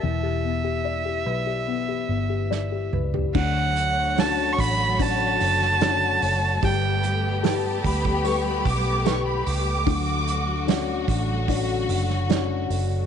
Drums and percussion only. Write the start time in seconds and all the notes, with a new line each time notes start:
2.52 snare
2.93 mid tom
3.14 floor tom
3.35 kick, crash
3.76 hi-hat pedal, open hi-hat
4.18 snare, hi-hat pedal, open hi-hat
4.59 kick, hi-hat pedal, open hi-hat
4.99 kick, hi-hat pedal, open hi-hat
5.40 hi-hat pedal, open hi-hat
5.62 snare
5.81 snare, hi-hat pedal, open hi-hat
6.22 hi-hat pedal, open hi-hat
6.63 kick, hi-hat pedal, open hi-hat
7.03 hi-hat pedal, open hi-hat
7.44 snare, hi-hat pedal, open hi-hat
7.84 kick, hi-hat pedal, open hi-hat
8.05 kick
8.25 hi-hat pedal, open hi-hat
8.65 kick, hi-hat pedal, open hi-hat
9.06 snare, hi-hat pedal, open hi-hat
9.46 hi-hat pedal, open hi-hat
9.87 kick, hi-hat pedal, open hi-hat
10.27 hi-hat pedal, open hi-hat
10.68 snare, hi-hat pedal, open hi-hat
11.08 kick, hi-hat pedal, open hi-hat
11.48 kick, hi-hat pedal, open hi-hat
11.89 hi-hat pedal, open hi-hat
12.10 snare
12.29 snare, hi-hat pedal, open hi-hat
12.70 hi-hat pedal, open hi-hat